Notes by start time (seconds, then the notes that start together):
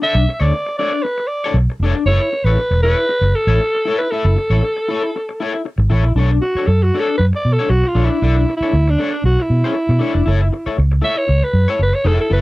0.02 D4 A4 D5 E5
0.15 B1, muted clean electric guitar stroke
0.29 muted clean electric guitar stroke
0.33 E5
0.40 D2 D4 A4 C#5 D5
0.53 muted clean electric guitar stroke
0.66 muted clean electric guitar stroke
0.78 D4 A4 C#5 D5
0.93 muted clean electric guitar stroke
1.03 B4, muted clean electric guitar stroke
1.18 muted clean electric guitar stroke
1.28 D5
1.44 D4 A4 C#5
1.54 B1, muted clean electric guitar stroke
1.70 muted clean electric guitar stroke
1.80 F1 D4
1.84 A4 C#5
1.95 muted clean electric guitar stroke
2.05 F#1 E4 A4 C#5
2.21 muted clean electric guitar stroke
2.33 muted clean electric guitar stroke
2.44 A1 A4 B4 C#5
2.49 E4
2.57 muted fingered electric bass stroke, muted clean electric guitar stroke
2.71 E1, muted clean electric guitar stroke
2.82 E4 A4 B4 C#5
2.98 muted clean electric guitar stroke
3.09 muted clean electric guitar stroke
3.21 F#1, muted clean electric guitar stroke
3.35 A4
3.47 A1 E4 A4 C#5
3.61 muted clean electric guitar stroke
3.75 muted clean electric guitar stroke
3.85 E4 A4 C#5
3.98 B4, muted clean electric guitar stroke
4.11 E4 A4 E5
4.25 F#1, muted clean electric guitar stroke
4.36 muted clean electric guitar stroke
4.50 A1 E4 A4 C#5
4.63 muted clean electric guitar stroke
4.77 muted clean electric guitar stroke
4.88 E4 A4 C#5
5.04 muted clean electric guitar stroke
5.16 muted clean electric guitar stroke
5.29 muted clean electric guitar stroke
5.40 E4 A4 C#5
5.54 muted clean electric guitar stroke
5.65 muted clean electric guitar stroke
5.78 G#1, muted clean electric guitar stroke
5.90 A1 E4 A4 C#5
6.03 A#1, muted clean electric guitar stroke
6.15 B1 D4 A4 C#5
6.31 muted clean electric guitar stroke
6.42 F#4, muted clean electric guitar stroke
6.55 D4 A4 C#5, muted fingered electric bass stroke
6.67 F#2 A4, muted clean electric guitar stroke
6.83 F#4, muted clean electric guitar stroke
6.94 D4 A4 C#5
7.00 A4
7.09 muted clean electric guitar stroke
7.18 F#2 B4, muted clean electric guitar stroke
7.33 D5, muted clean electric guitar stroke
7.45 B2
7.53 A4
7.59 D4 A4 C#5
7.70 B1 F#4, muted clean electric guitar stroke
7.84 muted clean electric guitar stroke
7.88 F4
7.95 A#1 D4 A4 C#5
8.05 E4
8.09 muted clean electric guitar stroke
8.22 B1 D4 A4 D5
8.36 muted clean electric guitar stroke
8.49 muted clean electric guitar stroke
8.57 E4, muted fingered electric bass stroke
8.63 D4 A4 C#5
8.73 D2, muted clean electric guitar stroke
8.88 D4, muted clean electric guitar stroke
8.98 D4 A4 C#5
9.12 muted clean electric guitar stroke
9.24 B1 F#4, muted clean electric guitar stroke
9.40 E4, muted clean electric guitar stroke
9.50 B2
9.64 D4 A4 C#5
9.75 muted clean electric guitar stroke
9.89 B2, muted clean electric guitar stroke
9.99 D4 A4 C#5
10.14 F1, muted clean electric guitar stroke
10.26 F#1 E4 A4 C#5
10.41 muted clean electric guitar stroke
10.53 muted clean electric guitar stroke
10.66 E4 A4 C#5, muted fingered electric bass stroke
10.78 C#2, muted clean electric guitar stroke
10.92 muted clean electric guitar stroke
11.02 E4 A4 C#5 E5
11.16 C#5, muted clean electric guitar stroke
11.28 C#2, muted clean electric guitar stroke
11.42 B4, muted clean electric guitar stroke
11.53 F#2
11.68 E4 A4 C#5
11.79 F#1 B4, muted clean electric guitar stroke
11.93 C#5, muted clean electric guitar stroke
12.05 F1 E4 A4 C#5
12.19 A4, muted clean electric guitar stroke
12.30 F#1 E4 A4 B4 E5